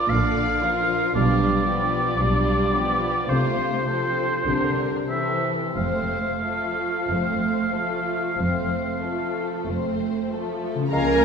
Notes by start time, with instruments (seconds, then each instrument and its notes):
Already playing: harp A#2 F3 D4, viola section F3, oboe D5
0.08 double bass section A#1, cello section A#2, viola section D3, violin section D4 D5, harp F4, oboe F5
0.62 viola section F3, harp D4, violin section F4 A#4
1.14 double bass section B1, harp B2, cello section B2, viola section G3, violin section D4 F4, oboe D5
1.66 viola section F3, violin section B3 G4, harp D4
2.19 double bass section B1, cello section B2, viola section G3, violin section D4 F4, harp F4
2.72 viola section F3, violin section B3 G4, harp D4
3.28 double bass section C2, harp C3, cello section C3, viola section A3, violin section F4 C5, oboe C5
3.87 viola section F3, violin section C4 A4, harp A4
4.45 double bass section C2, cello section C3, harp C3, viola section D3, violin section D4 A#4
5.08 viola section E3, violin section C4 A4, harp E4 A4, oboe E5
5.74 double bass section F1, cello section F2, harp F3, viola section A3, violin section C4 C5, oboe F5
6.44 viola section F3, violin section A3 A4, harp F4
7.10 double bass section F1, cello section F2, viola section A3, violin section C4 C5, harp A4
7.74 viola section F3, violin section A3 A4, harp F4
8.38 double bass section F1, cello section F2, viola section A3, violin section C4 C5, harp C4
9.02 viola section F3, violin section A3 A4, harp F4
9.66 double bass section F1, cello section F2, viola section A3, violin section C4 C5, harp A4
10.31 viola section F3, violin section A3 A4, harp F4
10.74 harp C#3
10.79 harp C#4
10.83 harp F4
10.88 harp G#4
10.92 double bass section C#2, french horn section F3 C#4, bassoon G#3, cello section A#3, oboe A#4, viola section A#4, clarinet F5, violin section F5 A#5, trumpet G#5, flute A#5
11.21 violin section G#5